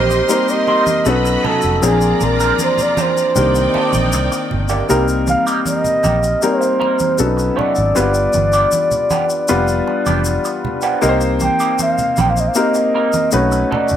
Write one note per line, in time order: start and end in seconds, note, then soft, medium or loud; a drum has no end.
0.00 0.21 A#1 medium
0.00 0.29 G3 medium
0.00 0.29 A#3 medium
0.00 0.29 C4 medium
0.00 0.29 D#4 medium
0.00 1.02 G4 medium
0.00 0.30 A#4 loud
0.00 0.30 C5 loud
0.00 1.02 D#5 medium
0.00 1.02 C6 medium
0.10 muted clean electric guitar stroke soft
0.10 shaker soft
0.29 1.06 G3 medium
0.29 1.06 A#3 medium
0.29 1.06 C4 medium
0.29 1.05 D#4 medium
0.29 1.06 A#4 medium
0.29 0.52 C5 medium
0.29 muted clean electric guitar stroke soft
0.29 shaker medium
0.48 1.10 D#5 loud
0.48 muted clean electric guitar stroke soft
0.48 shaker soft
0.67 0.83 G3 medium
0.67 0.83 C4 medium
0.67 0.84 D#4 medium
0.67 0.84 C5 medium
0.67 muted conga soft
0.87 muted clean electric guitar stroke soft
0.87 high conga medium
0.87 shaker medium
1.05 1.36 B1 loud
1.05 1.67 F#3 medium
1.05 1.67 B3 medium
1.05 1.67 C#4 medium
1.05 1.67 D#4 medium
1.05 1.81 F#4 medium
1.05 1.67 A4 medium
1.05 1.46 B4 loud
1.05 1.81 D#5 medium
1.05 1.81 B5 medium
1.05 muted conga soft
1.05 shaker medium
1.25 muted clean electric guitar stroke soft
1.25 shaker soft
1.44 1.60 F#3 medium
1.44 1.60 C#4 medium
1.44 1.60 D#4 medium
1.44 1.60 A4 medium
1.44 1.82 A4 medium
1.44 low conga medium
1.62 1.79 F1 medium
1.62 muted clean electric guitar stroke soft
1.62 shaker soft
1.82 2.12 A#1 loud
1.82 2.91 F3 medium
1.82 1.98 F3 medium
1.82 2.92 A#3 medium
1.82 2.92 C4 medium
1.82 1.98 C4 medium
1.82 2.92 D4 medium
1.82 1.98 D4 medium
1.82 3.32 F4 medium
1.82 2.92 G#4 medium
1.82 2.26 G#4 medium
1.82 1.99 A#4 medium
1.82 3.32 D5 medium
1.82 3.32 A#5 loud
1.82 muted conga soft
1.82 shaker medium
2.01 shaker soft
2.21 2.51 A#1 loud
2.21 2.61 A#4 medium
2.21 muted clean electric guitar stroke soft
2.21 muted conga soft
2.21 high conga medium
2.21 shaker soft
2.40 2.53 F3 soft
2.40 2.53 C4 soft
2.40 2.53 D4 soft
2.40 2.52 A#4 medium
2.40 shaker soft
2.59 muted clean electric guitar stroke soft
2.59 muted conga soft
2.59 high conga medium
2.59 shaker medium
2.63 2.84 C5 medium
2.78 low conga medium
2.78 shaker soft
2.82 3.03 D5 medium
2.97 3.10 F3 medium
2.97 3.10 C4 medium
2.97 3.10 D4 medium
2.97 3.10 A#4 medium
2.97 muted conga soft
2.97 high conga medium
2.97 shaker soft
3.01 4.53 C5 loud
3.17 muted clean electric guitar stroke soft
3.17 shaker soft
3.35 3.66 C2 loud
3.35 4.45 D#3 medium
3.35 4.45 A#3 medium
3.35 4.45 C4 medium
3.35 4.45 D4 medium
3.35 4.86 D#4 medium
3.35 4.45 G4 medium
3.35 4.86 D5 medium
3.35 4.86 G5 loud
3.35 muted clean electric guitar stroke soft
3.35 muted conga soft
3.35 low conga medium
3.35 shaker medium
3.55 muted clean electric guitar stroke soft
3.55 shaker soft
3.74 3.90 D#3 medium
3.74 3.90 A#3 medium
3.74 3.90 D4 medium
3.74 3.90 G4 medium
3.74 muted fingered electric bass stroke soft
3.74 muted conga soft
3.93 4.14 A#1 medium
3.93 muted clean electric guitar stroke soft
3.93 high conga medium
3.93 shaker soft
4.12 4.28 C2 medium
4.12 muted clean electric guitar stroke soft
4.12 shaker medium
4.32 muted clean electric guitar stroke soft
4.32 shaker soft
4.51 4.81 G1 medium
4.51 low conga medium
4.68 4.86 D#3 medium
4.68 4.86 A#3 medium
4.68 4.86 D4 medium
4.68 4.85 G4 medium
4.68 shaker soft
4.89 5.34 C2 loud
4.89 5.04 G3 medium
4.89 5.98 G3 medium
4.89 5.05 A#3 medium
4.89 5.99 A#3 medium
4.89 5.99 C4 medium
4.89 5.05 D#4 medium
4.89 5.99 D#4 medium
4.89 5.05 G4 medium
4.89 5.99 A#4 medium
4.89 shaker medium
5.08 shaker soft
5.27 5.46 F5 medium
5.27 muted clean electric guitar stroke soft
5.27 muted conga soft
5.27 high conga medium
5.27 shaker soft
5.47 5.59 G3 soft
5.47 5.59 A#3 soft
5.47 5.59 D#4 medium
5.47 5.59 G4 medium
5.47 shaker soft
5.65 6.39 D#5 loud
5.65 muted clean electric guitar stroke soft
5.65 muted conga soft
5.65 high conga medium
5.65 shaker medium
5.84 low conga medium
5.84 shaker soft
6.03 6.34 A#1 medium
6.03 6.16 G3 medium
6.03 6.16 A#3 medium
6.03 6.16 D#4 medium
6.03 6.16 G4 medium
6.03 high conga medium
6.03 shaker soft
6.23 muted clean electric guitar stroke soft
6.23 shaker soft
6.42 7.19 G3 medium
6.42 7.19 A#3 medium
6.42 7.19 C4 medium
6.42 7.19 D#4 medium
6.42 7.19 A#4 medium
6.42 7.21 C5 loud
6.42 muted clean electric guitar stroke soft
6.42 muted conga soft
6.42 shaker medium
6.61 muted clean electric guitar stroke soft
6.61 shaker soft
6.80 6.96 G3 medium
6.80 6.96 A#3 medium
6.80 6.96 D#4 medium
6.80 6.96 A#4 medium
6.80 muted conga soft
6.99 muted clean electric guitar stroke soft
6.99 high conga medium
6.99 shaker soft
7.18 7.49 B1 medium
7.18 7.80 F#3 medium
7.18 7.80 B3 medium
7.18 7.80 C#4 medium
7.18 7.25 D4 medium
7.18 7.81 A4 medium
7.18 7.59 B4 medium
7.18 muted conga soft
7.18 shaker medium
7.26 7.84 D#4 medium
7.37 muted clean electric guitar stroke soft
7.37 shaker soft
7.56 7.72 D#3 medium
7.56 7.72 A3 medium
7.56 7.73 C#4 medium
7.56 7.73 F#4 medium
7.56 10.64 D5 loud
7.56 muted conga soft
7.56 low conga medium
7.75 7.92 G#1 loud
7.75 muted clean electric guitar stroke soft
7.75 shaker soft
7.95 8.26 G1 loud
7.95 8.11 F3 medium
7.95 9.05 G3 medium
7.95 9.05 B3 medium
7.95 8.11 B3 medium
7.95 9.05 D4 medium
7.95 8.11 D4 medium
7.95 9.05 F4 medium
7.95 8.11 G4 medium
7.95 9.05 B4 medium
7.95 shaker medium
8.14 shaker soft
8.33 8.64 G1 medium
8.33 muted clean electric guitar stroke soft
8.33 muted conga soft
8.33 high conga medium
8.33 shaker soft
8.53 8.66 F3 soft
8.53 8.66 B3 soft
8.53 8.66 D4 medium
8.53 8.65 G4 medium
8.53 shaker soft
8.72 muted clean electric guitar stroke soft
8.72 muted conga soft
8.72 high conga medium
8.72 shaker medium
8.91 low conga medium
8.91 shaker soft
9.10 9.23 F3 medium
9.10 9.23 B3 medium
9.10 9.23 D4 medium
9.10 9.23 G4 medium
9.10 high conga medium
9.10 shaker soft
9.29 muted clean electric guitar stroke soft
9.29 shaker soft
9.48 9.80 F1 medium
9.48 9.64 F3 medium
9.48 10.58 G3 medium
9.48 10.58 B3 medium
9.48 9.65 B3 medium
9.48 10.58 D4 medium
9.48 9.65 D4 medium
9.48 10.58 F4 medium
9.48 9.65 G4 medium
9.48 10.58 B4 medium
9.48 shaker medium
9.68 shaker soft
9.87 muted clean electric guitar stroke soft
9.87 muted conga soft
10.06 10.37 F1 medium
10.06 10.19 F3 medium
10.06 10.19 B3 medium
10.06 10.19 D4 medium
10.06 10.19 G4 medium
10.06 high conga medium
10.06 shaker soft
10.25 muted clean electric guitar stroke soft
10.25 shaker medium
10.45 muted clean electric guitar stroke soft
10.45 shaker soft
10.65 low conga medium
10.81 10.99 F3 medium
10.81 10.99 B3 medium
10.81 10.99 D4 medium
10.81 10.99 G4 medium
10.81 shaker soft
11.01 11.48 C2 loud
11.01 11.18 G3 medium
11.01 12.11 A#3 medium
11.01 11.18 A#3 medium
11.01 12.12 C4 medium
11.01 12.12 D#4 medium
11.01 11.19 D#4 medium
11.01 12.12 G4 medium
11.01 11.19 G4 medium
11.01 11.09 A#4 medium
11.01 muted conga soft
11.01 shaker medium
11.09 12.15 C5 loud
11.21 shaker soft
11.40 muted clean electric guitar stroke soft
11.40 muted conga soft
11.40 high conga medium
11.40 shaker soft
11.44 11.78 G5 loud
11.60 11.73 G3 soft
11.60 11.73 A#3 medium
11.60 11.73 D#4 medium
11.60 11.72 G4 medium
11.60 shaker medium
11.79 12.23 F5 loud
11.79 muted clean electric guitar stroke soft
11.79 high conga medium
11.79 shaker medium
11.98 low conga medium
11.98 shaker soft
12.17 12.48 A#1 medium
12.17 12.30 G3 medium
12.17 12.30 A#3 medium
12.17 12.30 D#4 medium
12.17 12.31 G4 medium
12.17 muted conga soft
12.17 high conga medium
12.17 shaker soft
12.21 12.31 G5 medium
12.30 12.41 F5 medium
12.37 12.50 D#5 medium
12.37 muted clean electric guitar stroke soft
12.37 shaker soft
12.48 12.59 F5 medium
12.55 13.32 A#3 medium
12.55 13.33 C4 medium
12.55 13.31 D#4 medium
12.55 13.33 G4 medium
12.55 13.33 A#4 medium
12.55 13.33 D#5 loud
12.55 muted clean electric guitar stroke soft
12.55 shaker medium
12.74 muted clean electric guitar stroke soft
12.74 shaker soft
12.94 13.10 G3 medium
12.94 13.10 A#3 medium
12.94 13.10 D#4 medium
12.94 13.11 A#4 medium
13.13 muted clean electric guitar stroke soft
13.13 high conga medium
13.13 shaker medium
13.31 13.63 B1 medium
13.31 13.94 A3 medium
13.31 13.94 C#4 medium
13.31 13.94 D#4 medium
13.31 13.94 F#4 medium
13.31 13.94 B4 medium
13.31 13.69 C#5 medium
13.31 muted conga soft
13.31 shaker medium
13.52 muted clean electric guitar stroke soft
13.52 shaker soft
13.71 13.87 F#3 medium
13.71 13.87 C#4 medium
13.71 13.87 D#4 medium
13.71 13.87 A4 medium
13.71 13.97 D5 medium
13.71 muted conga soft
13.71 low conga medium
13.88 13.97 F1 medium
13.88 muted clean electric guitar stroke soft
13.88 shaker soft